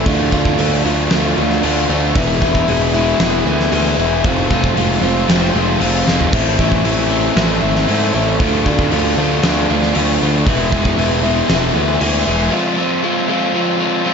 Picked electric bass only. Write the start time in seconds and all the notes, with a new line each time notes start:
0.06 D2
0.33 D2
0.59 D2
0.85 D2
1.11 D2
1.38 D2
1.64 D2
1.89 D2
2.16 E1
2.42 E1
2.68 E1
3.20 E1
3.46 D2
3.72 D2
3.98 E1
4.24 F1
4.51 F1
4.76 F1
5.01 F1
5.28 F1
5.54 F1
5.80 F1
6.07 F1
6.33 A1
6.59 A1
6.84 A1
7.36 A1
7.63 G#1
7.89 G#2
8.14 A1
8.40 D2
8.66 D2
8.92 D2
9.17 D2
9.44 D2
9.70 D2
9.96 D2
10.22 D2
10.47 E1
10.72 E1
10.98 E1
11.49 E1
11.75 D2
12.01 D2
12.27 E1